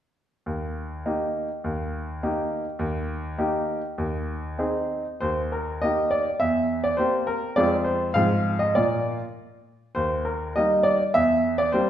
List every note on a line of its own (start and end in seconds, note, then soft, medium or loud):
0.46 1.04 D#2 soft
1.06 1.48 A#3 soft
1.06 1.48 D#4 soft
1.06 1.48 G4 soft
1.64 2.20 D#2 soft
2.23 2.64 A#3 soft
2.23 2.64 D#4 soft
2.23 2.64 G4 soft
2.79 3.36 D#2 medium
3.38 3.80 A#3 soft
3.38 3.81 D#4 soft
3.38 3.81 G4 soft
3.98 4.57 D#2 medium
4.58 5.04 C4 soft
4.58 5.04 D#4 soft
4.58 5.04 G#4 soft
5.21 5.80 D#2 soft
5.21 5.39 C5 medium
5.52 5.82 A#4 soft
5.82 6.25 A#3 soft
5.82 6.25 D#4 soft
5.82 6.25 G4 soft
5.82 6.11 D#5 medium
6.11 6.28 D5 medium
6.40 6.97 E2 soft
6.40 6.80 E5 medium
6.84 6.98 D5 medium
6.97 7.40 A#3 soft
6.97 7.41 C4 soft
6.97 7.40 G4 soft
6.97 7.27 C5 medium
7.27 7.56 A#4 medium
7.56 8.13 F2 medium
7.56 8.11 G#3 soft
7.56 8.11 C4 soft
7.56 8.12 F4 soft
7.56 7.74 D5 medium
7.84 8.11 C5 medium
8.14 8.73 G#2 medium
8.14 8.71 F3 soft
8.14 8.71 C4 soft
8.14 8.72 F4 soft
8.14 8.59 F5 medium
8.59 8.75 D#5 medium
8.75 9.18 A#2 soft
8.75 9.24 A#3 soft
8.75 9.24 F4 soft
8.75 9.11 D5 medium
9.95 10.54 D#2 soft
9.95 10.25 C5 medium
10.25 10.52 A#4 soft
10.56 10.99 G3 soft
10.56 10.99 A#3 soft
10.56 11.00 D#4 soft
10.56 10.85 D#5 medium
10.83 11.02 D5 medium
11.14 11.71 E2 medium
11.14 11.58 E5 medium
11.58 11.73 D5 medium
11.72 11.90 G3 soft
11.72 11.90 A#3 soft
11.72 11.90 C4 soft
11.72 11.90 C5 medium